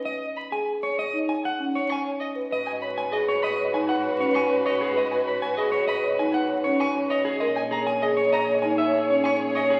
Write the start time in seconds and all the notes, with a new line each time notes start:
Already playing: B4
0.05 D#5
0.36 B5
0.52 G#4 G#5
0.83 C#5
0.98 C#5 D#5
1.13 D#4
1.29 G#5
1.45 F#5
1.59 C#4
1.75 C#5
1.89 C#5 G#5 C#6
2.20 D#5
2.35 B4
2.50 G#2 F#4 B4 D#5
2.66 G#5
2.81 C#5 B5
2.98 G#5
3.12 G#4 D#5
3.28 C#5
3.42 D#5 B5
3.58 C#5
3.73 D#4 G#5
3.89 F#5
4.04 C#5
4.19 C#4 C#5
4.34 G#5 C#6
4.49 C#5
4.65 C#5 D#5
4.81 G#4
4.95 B4 D#5
5.11 G#5
5.26 C#5 B5
5.42 G#5
5.57 G#4 D#5
5.72 C#5
5.87 D#5 B5
6.03 C#5
6.19 D#4 G#5
6.34 F#5
6.49 C#5
6.64 C#4 C#5
6.80 G#5 C#6
6.95 C#5
7.10 C#5 D#5
7.25 G#4
7.39 A#1 G#4 A#4 C#5 D#5
7.56 G#5
7.71 G#4 C#5 A#5
7.87 G#5
8.02 G#4 D#5
8.17 C#5
8.32 D#5 A#5
8.48 C#5
8.62 D#4 G#5
8.78 E5
8.94 C#5
9.10 C#4 C#5
9.24 G#5 C#6
9.40 C#5
9.55 C#5 D#5
9.70 G#4